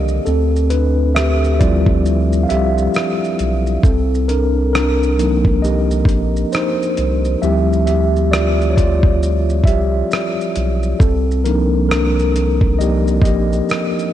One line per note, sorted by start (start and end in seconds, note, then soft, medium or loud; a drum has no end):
0.00 0.20 C2 medium
0.00 0.22 D3 medium
0.00 0.22 D#3 medium
0.00 0.22 F3 soft
0.00 0.22 A#3 soft
0.00 0.27 G4 medium
0.00 0.27 D5 medium
0.00 0.29 D#5 medium
0.00 0.27 F5 medium
0.08 shaker soft
0.25 2.46 D2 loud
0.25 0.68 C4 medium
0.25 0.71 A4 medium
0.25 shaker medium
0.56 shaker soft
0.70 1.13 D4 medium
0.70 1.16 B4 medium
0.70 closed hi-hat medium
0.70 shaker medium
1.15 1.53 G4 medium
1.15 1.53 E5 loud
1.15 cross-stick loud
1.15 shaker medium
1.44 shaker medium
1.54 1.59 E5 medium
1.59 2.24 F3 medium
1.59 2.24 G3 medium
1.59 2.24 C4 medium
1.59 2.24 E4 medium
1.59 2.41 F4 medium
1.59 2.46 D5 medium
1.59 kick medium
1.59 closed hi-hat medium
1.59 shaker medium
1.86 kick medium
2.05 shaker medium
2.32 shaker medium
2.43 2.49 F5 medium
2.49 2.88 C2 medium
2.49 3.80 G4 medium
2.49 3.88 E5 loud
2.49 closed hi-hat medium
2.49 shaker soft
2.78 shaker soft
2.94 cross-stick loud
2.94 shaker medium
3.24 shaker soft
3.39 3.78 B1 medium
3.39 closed hi-hat medium
3.39 shaker medium
3.66 shaker soft
3.83 6.04 C2 loud
3.83 4.26 C4 medium
3.83 4.29 A4 medium
3.83 kick loud
3.83 shaker medium
4.15 shaker soft
4.28 4.71 D4 medium
4.28 4.72 A#4 medium
4.28 closed hi-hat medium
4.28 shaker soft
4.73 5.18 D4 medium
4.73 5.65 A#4 medium
4.73 cross-stick loud
4.73 shaker medium
5.03 shaker soft
5.18 5.82 F3 medium
5.18 5.82 A#3 medium
5.18 5.83 D4 medium
5.18 5.83 D#4 medium
5.18 closed hi-hat medium
5.18 shaker medium
5.45 kick medium
5.62 6.49 G4 medium
5.62 6.55 D#5 medium
5.62 shaker medium
5.91 shaker medium
6.05 6.45 A#1 medium
6.05 kick medium
6.05 closed hi-hat medium
6.05 shaker soft
6.36 shaker soft
6.52 7.39 D#4 medium
6.52 7.44 C5 medium
6.52 cross-stick loud
6.52 shaker medium
6.83 shaker soft
6.97 7.36 C2 medium
6.97 closed hi-hat medium
6.97 shaker soft
7.25 shaker soft
7.42 9.62 D2 loud
7.42 10.96 F3 medium
7.42 10.96 G3 medium
7.42 10.97 C4 medium
7.42 10.97 E4 medium
7.42 7.85 G4 medium
7.42 7.85 E5 loud
7.42 shaker medium
7.73 shaker soft
7.86 8.29 G4 medium
7.86 8.33 E5 medium
7.86 closed hi-hat medium
7.86 shaker medium
8.16 shaker soft
8.31 8.69 F4 medium
8.31 8.72 D5 loud
8.31 cross-stick loud
8.31 shaker medium
8.61 shaker medium
8.70 8.76 C#5 medium
8.76 9.63 F4 medium
8.76 9.68 D5 medium
8.76 kick medium
8.76 closed hi-hat medium
8.76 shaker medium
9.03 kick loud
9.23 shaker medium
9.50 shaker medium
9.64 10.03 C2 medium
9.64 11.04 E5 loud
9.64 kick loud
9.64 closed hi-hat medium
9.64 shaker soft
9.68 10.97 G4 medium
10.11 cross-stick loud
10.11 shaker medium
10.41 shaker soft
10.56 10.94 B1 loud
10.56 closed hi-hat medium
10.56 shaker soft
10.83 shaker soft
10.99 13.20 C2 loud
10.99 11.43 C4 medium
10.99 11.41 A4 medium
10.99 kick loud
10.99 shaker medium
11.31 shaker soft
11.44 12.09 F3 medium
11.44 12.09 A#3 soft
11.44 11.87 D4 medium
11.44 12.10 D#4 medium
11.44 11.88 A#4 medium
11.44 closed hi-hat medium
11.44 shaker medium
11.89 12.76 D4 medium
11.89 12.81 A#4 medium
11.89 cross-stick loud
11.89 shaker medium
12.19 shaker soft
12.36 closed hi-hat medium
12.36 shaker medium
12.61 kick medium
12.79 13.20 F3 soft
12.79 13.20 A#3 soft
12.79 13.21 D#4 medium
12.79 13.22 G4 medium
12.79 13.20 D5 soft
12.79 13.22 D#5 loud
12.79 shaker medium
13.08 shaker medium
13.22 13.61 A#1 medium
13.22 14.13 D#5 loud
13.22 kick medium
13.22 closed hi-hat medium
13.22 shaker soft
13.26 14.13 G4 medium
13.53 shaker soft
13.69 cross-stick loud
13.69 shaker medium
13.99 shaker soft